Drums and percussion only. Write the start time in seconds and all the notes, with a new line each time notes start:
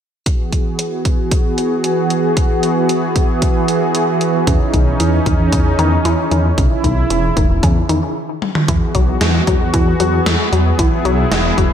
0.26 kick, closed hi-hat
0.53 kick, closed hi-hat
0.79 closed hi-hat
1.05 kick, closed hi-hat
1.31 kick, closed hi-hat
1.58 closed hi-hat
1.84 closed hi-hat
2.10 closed hi-hat
2.37 kick, closed hi-hat
2.63 closed hi-hat
2.89 closed hi-hat
3.16 kick, closed hi-hat
3.42 kick, closed hi-hat
3.68 closed hi-hat
3.95 closed hi-hat
4.21 closed hi-hat
4.47 kick, closed hi-hat
4.74 kick, closed hi-hat
5.00 closed hi-hat
5.26 kick, closed hi-hat
5.53 kick, closed hi-hat
5.79 closed hi-hat
6.05 closed hi-hat
6.31 closed hi-hat
6.58 kick, closed hi-hat
6.84 kick, closed hi-hat
7.10 closed hi-hat
7.37 kick, closed hi-hat
7.63 kick, closed hi-hat
7.89 closed hi-hat
8.42 high tom
8.55 mid tom
8.68 kick, closed hi-hat
8.95 kick, closed hi-hat
9.21 snare, closed hi-hat
9.47 kick, closed hi-hat
9.74 kick, closed hi-hat
10.00 closed hi-hat
10.26 snare, closed hi-hat
10.53 closed hi-hat
10.79 kick, closed hi-hat
11.05 closed hi-hat
11.32 snare, closed hi-hat
11.58 kick, closed hi-hat